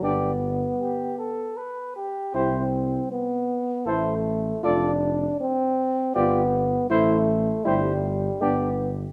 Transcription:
<<
  \new Staff \with { instrumentName = "Trumpet" } { \time 3/4 \key c \major \tempo 4 = 79 d''8 r2 r8 | c''8 r4. c''8 r8 | d''8 r4. d''8 r8 | c''8 r8 c''8 r8 d''8 r8 | }
  \new Staff \with { instrumentName = "Flugelhorn" } { \time 3/4 \key c \major g'8 r8 g'8 a'8 b'8 g'8 | g'8 r4. a'8 r8 | a'8 r4. g'8 r8 | e'8 r8 g'8 r8 g'8 r8 | }
  \new Staff \with { instrumentName = "French horn" } { \time 3/4 \key c \major d'8 r2 r8 | e'8 r4. e'8 r8 | f'8 r4. f'8 r8 | e'8 r8 e'8 r8 d'8 r8 | }
  \new Staff \with { instrumentName = "Euphonium" } { \time 3/4 \key c \major b2 r4 | c'4 b4 a4 | d'4 c'4 b4 | a4 g4 b8 r8 | }
  \new Staff \with { instrumentName = "Tuba" } { \clef bass \time 3/4 \key c \major g,,4 r2 | c,4 r4 a,,4 | f,,4 r4 g,,4 | a,,4 g,,4 g,,4 | }
>>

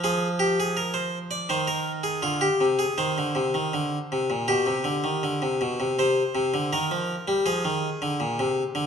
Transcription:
<<
  \new Staff \with { instrumentName = "Harpsichord" } { \time 4/4 \key f \dorian \tempo 4 = 81 aes'8 g'16 aes'16 bes'16 c''8 d''16 c''16 bes'8 aes'16 f'16 g'8 aes'16 | c''2 g'4. r8 | c''4 bes'4 aes'2 | }
  \new Staff \with { instrumentName = "Harpsichord" } { \clef bass \time 4/4 \key f \dorian f2 ees4 d8 c8 | ees16 d16 c16 ees16 d8 c16 bes,16 b,16 c16 d16 ees16 d16 c16 b,16 c16 | c8 c16 d16 ees16 f8 g16 f16 ees8 d16 bes,16 c8 d16 | }
>>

